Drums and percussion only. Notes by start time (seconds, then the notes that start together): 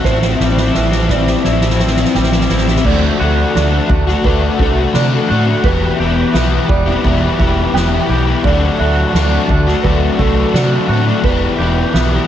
0.04 kick, snare
0.22 snare
0.40 snare
0.57 snare
0.74 snare
0.92 snare
1.09 kick, snare
1.27 snare
1.44 snare
1.61 snare
1.70 snare
1.79 snare
1.87 snare
1.96 snare
2.05 snare
2.14 snare
2.23 snare
2.32 snare
2.41 snare
2.49 snare
2.57 snare
2.67 snare
2.76 snare
2.85 kick, crash
3.20 crash
3.55 snare, crash
3.89 kick, crash
4.08 snare
4.24 kick, crash
4.59 kick, crash
4.93 snare, crash
5.28 crash
5.63 kick, crash
5.98 crash
6.34 snare, crash
6.69 kick, crash
7.05 kick, crash
7.40 kick, crash
7.76 snare, crash
8.10 crash
8.44 kick, crash
8.80 crash
9.14 snare, crash
9.49 kick, crash
9.68 snare
9.84 kick, crash
10.19 kick, crash
10.54 snare, crash
10.89 crash
11.23 kick, crash
11.59 crash
11.94 snare, crash